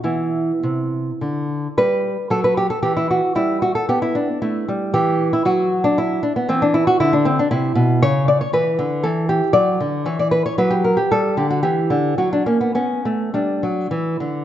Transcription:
0.04 0.51 E3 medium
0.04 1.74 B3 soft
0.04 1.46 E4 medium
0.63 1.10 C3 medium
1.21 1.67 D3 soft
1.78 2.16 G3 medium
1.78 2.29 B4 medium
2.30 2.68 F#3 medium
2.30 2.44 A4 medium
2.44 2.57 B4 medium
2.57 2.70 G4 medium
2.70 2.82 A4 medium
2.82 3.20 E3 medium
2.82 2.96 G4 medium
2.97 3.10 E4 medium
3.11 3.35 F#4 medium
3.35 3.73 G3 medium
3.35 3.60 E4 medium
3.62 3.75 F#4 medium
3.75 3.88 A4 medium
3.89 4.27 B3 medium
3.89 4.02 G4 medium
4.02 4.15 E4 medium
4.15 4.40 D4 medium
4.42 4.66 A3 medium
4.42 4.91 E4 medium
4.68 4.93 G3 medium
4.94 5.31 E3 medium
4.94 5.31 G4 medium
5.33 5.45 E4 medium
5.45 6.20 F#3 medium
5.45 5.83 F#4 medium
5.84 5.97 D4 medium
5.98 6.22 E4 medium
6.23 6.36 D4 medium
6.36 6.49 B3 medium
6.49 6.86 E3 medium
6.49 6.62 C4 loud
6.62 6.75 D4 medium
6.74 6.87 E4 medium
6.87 7.00 F#4 medium
7.00 7.37 D3 medium
7.00 7.13 E4 medium
7.13 7.26 D4 medium
7.25 7.38 C4 medium
7.39 7.50 D4 medium
7.51 7.75 C3 medium
7.51 8.01 E4 loud
7.75 8.01 B2 medium
8.02 8.40 C#3 medium
8.02 8.27 C#5 loud
8.28 8.40 D5 loud
8.41 8.53 C#5 medium
8.53 8.77 E3 medium
8.53 9.02 B4 loud
8.79 9.03 D3 medium
9.03 9.40 E3 medium
9.03 9.28 A4 medium
9.29 9.54 G4 medium
9.53 9.79 F#3 medium
9.53 10.04 D5 loud
9.80 10.05 D3 medium
10.05 10.43 E3 medium
10.05 10.19 C#5 medium
10.19 10.31 D5 medium
10.31 10.45 B4 medium
10.46 10.58 C#5 medium
10.58 10.96 F#3 medium
10.58 10.71 B4 loud
10.70 10.84 G4 medium
10.84 10.97 A#4 medium
10.97 11.10 G4 medium
11.11 11.35 G3 medium
11.11 11.36 A4 loud
11.37 11.61 D3 medium
11.37 11.50 G4 medium
11.50 11.62 F#4 medium
11.63 11.88 E3 medium
11.63 12.16 G4 medium
11.90 12.17 D3 medium
12.18 12.45 F#3 medium
12.18 12.32 F#4 medium
12.33 12.46 D4 medium
12.46 12.74 A#3 medium
12.46 12.60 C#4 medium
12.61 12.74 B3 medium
12.75 13.03 B3 medium
12.75 13.31 C#4 medium
13.05 13.32 A3 medium
13.34 13.61 G3 medium
13.34 13.89 D4 medium
13.63 13.90 F#3 medium
13.91 14.19 E3 medium
14.20 14.45 D3 medium

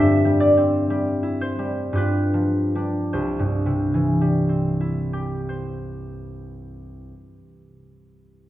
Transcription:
0.00 1.92 G2 medium
0.00 1.94 G4 medium
0.00 1.40 C5 medium
0.00 2.00 E5 medium
0.25 0.89 G3 medium
0.40 2.18 D5 medium
0.57 2.00 C4 medium
0.90 1.58 G3 soft
1.23 2.00 E4 soft
1.41 2.00 C5 medium
1.59 2.74 G3 soft
1.93 3.19 G2 medium
1.93 3.19 F4 soft
1.93 5.12 G4 soft
1.97 3.18 B4 medium
2.34 3.18 F3 soft
2.75 4.20 G3 soft
2.75 3.19 D4 soft
3.13 7.11 C2 soft
3.13 5.48 C5 soft
3.39 7.37 G2 soft
3.66 7.63 C3 soft
3.94 7.90 E3 soft
4.21 7.90 G3 soft
4.49 7.89 C4 soft
4.81 7.89 E4 soft
5.13 7.90 G4 soft
5.49 7.91 C5 soft

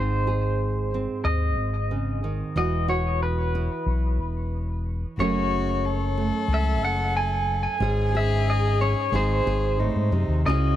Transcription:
0.00 1.06 G#1 medium
0.00 2.51 G#2 medium
0.00 0.92 C4 soft
0.00 2.52 D#4 soft
0.00 0.26 G#4 medium
0.00 1.20 C5 medium
0.27 2.52 G#4 medium
0.94 2.53 C4 soft
1.24 1.57 D#2 medium
1.24 2.56 D#5 medium
1.57 2.42 G#1 medium
1.91 2.23 C#3 soft
2.24 2.56 D#3 medium
2.56 3.68 E1 medium
2.56 5.17 E3 medium
2.56 3.54 E4 medium
2.56 2.88 F#4 medium
2.56 2.87 D#5 medium
2.88 5.17 F#4 medium
2.88 3.22 C#5 medium
3.23 4.81 B4 medium
3.55 5.14 E4 soft
3.86 4.19 B1 medium
4.19 5.03 E1 medium
5.17 6.30 F#1 medium
5.17 7.80 F#2 medium
5.17 6.16 A3 medium
5.17 7.79 C#4 medium
5.17 5.86 F#4 medium
5.17 6.02 G#4 medium
5.17 6.46 C#5 medium
5.84 7.80 A4 medium
6.18 7.80 A3 medium
6.48 6.81 C#2 medium
6.54 6.84 E5 medium
6.81 7.66 F#1 medium
6.81 7.14 F#5 medium
7.17 7.61 G#5 loud
7.63 8.16 G#5 medium
7.80 8.94 G#1 medium
7.80 9.08 G#2 medium
7.80 8.79 C#4 medium
7.80 9.09 G#4 loud
7.80 8.14 G#4 medium
8.15 9.09 G#4 medium
8.15 8.49 E5 medium
8.50 8.81 D#5 medium
8.81 9.09 C#4 medium
8.81 9.14 C#5 medium
9.12 9.41 G#1 loud
9.12 9.79 G#2 medium
9.12 10.42 C4 medium
9.12 10.42 D#4 medium
9.12 9.81 G#4 medium
9.12 9.46 G#4 medium
9.12 10.10 C5 medium
9.46 9.89 G#1 medium
9.46 10.42 G#4 medium
9.79 10.13 A2 medium
9.79 10.46 D#4 medium
9.96 10.11 G#2 medium
10.12 10.27 F#2 medium
10.12 10.46 C3 medium
10.28 10.44 D#2 medium
10.46 10.74 C#2 medium
10.46 10.76 C#3 medium
10.46 10.76 C#4 medium
10.46 10.76 E4 medium
10.46 10.76 F#4 medium
10.46 10.76 G#4 medium
10.46 10.76 D#5 medium

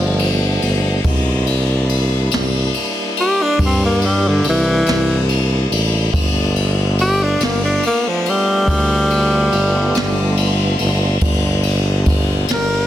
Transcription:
0.00 0.58 G1 medium
0.00 0.59 F3 loud
0.00 1.00 F3 medium
0.00 1.00 A3 medium
0.00 1.00 B3 medium
0.00 1.00 D4 medium
0.19 ride medium
0.62 1.02 G1 medium
0.62 ride medium
1.04 2.28 C2 loud
1.04 1.47 G#3 medium
1.04 1.47 B3 medium
1.04 1.47 D#4 medium
1.04 1.47 F4 medium
1.04 kick loud
1.04 ride medium
1.46 6.09 G3 medium
1.46 6.10 A#3 medium
1.46 6.10 D4 medium
1.46 6.10 E4 medium
1.46 ride medium
1.89 ride soft
2.31 2.71 C2 medium
2.31 snare loud
2.31 ride medium
2.74 ride medium
3.17 3.44 G4 medium
3.17 ride medium
3.42 3.60 D4 medium
3.59 4.40 G2 medium
3.59 kick loud
3.59 ride medium
3.65 3.82 C4 medium
3.85 4.07 A#3 medium
4.01 4.29 G3 medium
4.01 ride medium
4.28 4.45 D3 medium
4.44 4.83 C2 medium
4.44 ride medium
4.49 5.29 E3 loud
4.86 5.67 C2 medium
4.86 snare medium
4.86 ride medium
5.29 ride medium
5.71 6.10 A1 medium
5.71 ride medium
6.12 7.37 G1 loud
6.12 11.18 A3 medium
6.12 11.18 B3 medium
6.12 11.18 D4 medium
6.12 11.18 F4 medium
6.12 kick loud
6.12 ride medium
6.56 ride medium
6.99 7.25 G4 loud
6.99 ride medium
7.23 7.41 D4 medium
7.40 7.80 G1 medium
7.40 7.62 A#3 medium
7.40 snare loud
7.40 ride medium
7.64 7.83 D4 medium
7.83 8.09 A#3 medium
7.83 ride medium
8.08 8.31 F3 medium
8.26 10.78 G3 loud
8.26 ride medium
8.68 9.49 D2 loud
8.68 kick medium
8.68 ride medium
9.10 ride soft
9.52 9.92 G1 medium
9.52 ride medium
9.95 10.76 G1 medium
9.95 snare loud
9.95 ride medium
10.37 ride medium
10.79 11.19 G1 medium
10.79 ride medium
11.21 12.45 G1 loud
11.21 12.87 G3 medium
11.21 12.87 B3 medium
11.21 12.87 D4 medium
11.21 12.87 F4 medium
11.21 kick medium
11.21 ride medium
11.63 ride medium
12.06 kick medium
12.06 ride medium
12.48 12.87 G1 medium
12.48 snare loud
12.48 ride medium
12.53 12.87 A#4 medium

